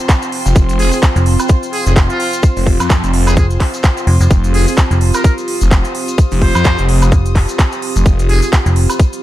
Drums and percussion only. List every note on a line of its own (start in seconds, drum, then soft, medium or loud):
0.09 kick loud
0.09 clap loud
0.09 closed hi-hat medium
0.09 shaker medium
0.22 closed hi-hat medium
0.22 shaker soft
0.32 open hi-hat loud
0.46 closed hi-hat soft
0.46 shaker medium
0.55 kick loud
0.55 closed hi-hat medium
0.55 shaker medium
0.69 closed hi-hat medium
0.69 shaker soft
0.79 open hi-hat loud
0.92 shaker medium
1.02 kick loud
1.02 clap loud
1.02 closed hi-hat medium
1.02 shaker medium
1.16 closed hi-hat medium
1.16 shaker soft
1.26 open hi-hat loud
1.39 closed hi-hat soft
1.39 high woodblock medium
1.39 shaker medium
1.49 kick loud
1.49 closed hi-hat medium
1.49 shaker medium
1.63 closed hi-hat medium
1.63 shaker soft
1.73 open hi-hat loud
1.86 closed hi-hat soft
1.86 shaker medium
1.96 kick loud
1.96 clap loud
1.96 closed hi-hat medium
1.96 shaker medium
2.10 closed hi-hat soft
2.10 shaker soft
2.20 open hi-hat loud
2.33 closed hi-hat soft
2.33 shaker medium
2.43 kick loud
2.43 closed hi-hat medium
2.43 shaker medium
2.57 open hi-hat medium
2.57 shaker soft
2.67 kick medium
2.67 open hi-hat loud
2.80 closed hi-hat soft
2.80 high woodblock medium
2.80 shaker medium
2.90 kick loud
2.90 clap loud
2.90 closed hi-hat medium
2.90 shaker medium
3.04 closed hi-hat medium
3.04 shaker soft
3.13 open hi-hat loud
3.27 closed hi-hat soft
3.27 high woodblock medium
3.27 shaker medium
3.36 kick loud
3.36 closed hi-hat medium
3.36 shaker medium
3.50 closed hi-hat medium
3.50 shaker soft
3.60 kick medium
3.60 clap medium
3.60 open hi-hat loud
3.74 closed hi-hat soft
3.74 shaker medium
3.83 kick loud
3.83 clap loud
3.83 closed hi-hat medium
3.83 shaker medium
3.97 closed hi-hat soft
3.97 shaker soft
4.07 open hi-hat loud
4.21 closed hi-hat soft
4.21 shaker medium
4.31 kick loud
4.31 closed hi-hat medium
4.31 shaker medium
4.44 closed hi-hat medium
4.44 shaker soft
4.54 open hi-hat loud
4.67 shaker medium
4.77 kick loud
4.77 clap loud
4.77 closed hi-hat medium
4.77 shaker medium
4.91 closed hi-hat soft
4.91 shaker soft
5.01 open hi-hat loud
5.14 closed hi-hat soft
5.14 high woodblock medium
5.14 shaker medium
5.24 kick loud
5.24 closed hi-hat medium
5.24 shaker medium
5.38 closed hi-hat soft
5.38 shaker soft
5.48 open hi-hat loud
5.61 closed hi-hat soft
5.61 shaker medium
5.71 kick loud
5.71 clap loud
5.71 closed hi-hat medium
5.71 shaker medium
5.84 closed hi-hat soft
5.84 shaker soft
5.95 open hi-hat loud
6.08 closed hi-hat soft
6.08 shaker medium
6.18 kick loud
6.18 closed hi-hat medium
6.18 shaker medium
6.31 open hi-hat medium
6.31 shaker soft
6.42 kick medium
6.42 open hi-hat loud
6.55 closed hi-hat soft
6.55 high woodblock medium
6.55 shaker medium
6.64 kick loud
6.64 clap loud
6.64 closed hi-hat medium
6.64 shaker medium
6.77 closed hi-hat medium
6.77 shaker soft
6.89 open hi-hat loud
7.02 high woodblock medium
7.02 shaker medium
7.12 kick loud
7.12 closed hi-hat medium
7.12 shaker medium
7.26 closed hi-hat medium
7.26 shaker soft
7.35 kick medium
7.35 clap medium
7.35 open hi-hat loud
7.49 closed hi-hat soft
7.49 shaker medium
7.59 kick loud
7.59 clap loud
7.59 closed hi-hat medium
7.59 shaker medium
7.72 closed hi-hat medium
7.72 shaker soft
7.82 open hi-hat loud
7.96 closed hi-hat soft
7.96 shaker medium
8.06 kick loud
8.06 closed hi-hat medium
8.06 shaker medium
8.19 closed hi-hat medium
8.19 shaker soft
8.29 open hi-hat loud
8.42 shaker medium
8.53 kick loud
8.53 clap loud
8.53 closed hi-hat medium
8.53 shaker medium
8.66 closed hi-hat medium
8.66 shaker soft
8.76 open hi-hat loud
8.90 closed hi-hat soft
8.90 high woodblock medium
8.90 shaker medium
8.99 kick loud
8.99 closed hi-hat medium
8.99 shaker medium
9.13 closed hi-hat medium
9.13 shaker soft